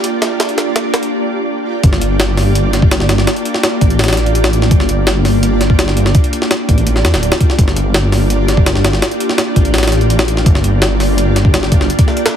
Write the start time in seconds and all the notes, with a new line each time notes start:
Already playing: A#3 D4 F4 G4 D5
0.04 closed hi-hat
0.22 snare, closed hi-hat
0.40 snare, closed hi-hat
0.49 closed hi-hat
0.58 snare, closed hi-hat
0.76 snare, closed hi-hat
0.94 snare, closed hi-hat
1.03 closed hi-hat
1.83 G1 A#3 D4 F4 G4 D5, kick, closed hi-hat
1.93 snare
2.02 closed hi-hat
2.20 snare, closed hi-hat
2.37 snare, open hi-hat
2.55 closed hi-hat
2.73 snare, closed hi-hat
2.82 kick
2.91 snare, closed hi-hat
3.00 snare
3.09 G1, snare, closed hi-hat
3.18 snare
3.27 snare, closed hi-hat
3.36 closed hi-hat
3.45 closed hi-hat
3.54 snare
3.63 snare, closed hi-hat
3.81 A1, kick, closed hi-hat
3.90 closed hi-hat
3.99 snare, closed hi-hat
4.04 snare, closed hi-hat
4.08 snare, closed hi-hat
4.13 snare, closed hi-hat
4.17 snare, closed hi-hat
4.26 closed hi-hat
4.35 closed hi-hat
4.44 snare
4.53 closed hi-hat
4.62 snare
4.70 G1 A#3 D4 F4 G4 D5, kick, closed hi-hat
4.80 snare
4.89 closed hi-hat
5.07 snare, closed hi-hat
5.25 snare, open hi-hat
5.43 closed hi-hat
5.61 snare, closed hi-hat
5.70 kick
5.79 snare, closed hi-hat
5.88 snare
5.97 G1, closed hi-hat
6.06 snare
6.15 kick, closed hi-hat
6.24 closed hi-hat
6.33 closed hi-hat
6.42 snare
6.51 snare, closed hi-hat
6.69 A1, kick, closed hi-hat
6.78 closed hi-hat
6.87 closed hi-hat
6.96 snare
7.05 E2, snare, closed hi-hat
7.13 D1, snare, closed hi-hat
7.23 closed hi-hat
7.32 snare
7.41 kick, closed hi-hat
7.50 snare
7.58 G1 A#3 D4 F4 G4 D5, kick, closed hi-hat
7.68 snare
7.76 closed hi-hat
7.94 snare, closed hi-hat
8.12 snare, open hi-hat
8.30 closed hi-hat
8.48 snare, closed hi-hat
8.57 kick
8.66 snare, closed hi-hat
8.76 snare
8.84 G1, snare, closed hi-hat
8.93 snare
9.02 snare, closed hi-hat
9.11 closed hi-hat
9.20 closed hi-hat
9.29 snare
9.38 snare, closed hi-hat
9.56 A1, kick, closed hi-hat
9.65 closed hi-hat
9.74 snare, closed hi-hat
9.78 snare, closed hi-hat
9.83 snare, closed hi-hat
9.88 snare, closed hi-hat
9.92 snare, closed hi-hat
10.01 closed hi-hat
10.10 closed hi-hat
10.19 snare
10.28 closed hi-hat
10.37 snare
10.46 G1 A#3 D4 F4 G4 D5, kick, closed hi-hat
10.55 snare
10.64 closed hi-hat
10.82 snare, closed hi-hat
11.00 snare, open hi-hat
11.18 closed hi-hat
11.36 snare, closed hi-hat
11.45 kick
11.54 snare, closed hi-hat
11.63 snare
11.72 G1, kick, closed hi-hat
11.81 snare
11.90 closed hi-hat
11.99 kick, closed hi-hat
12.08 snare
12.17 closed hi-hat
12.26 snare, closed hi-hat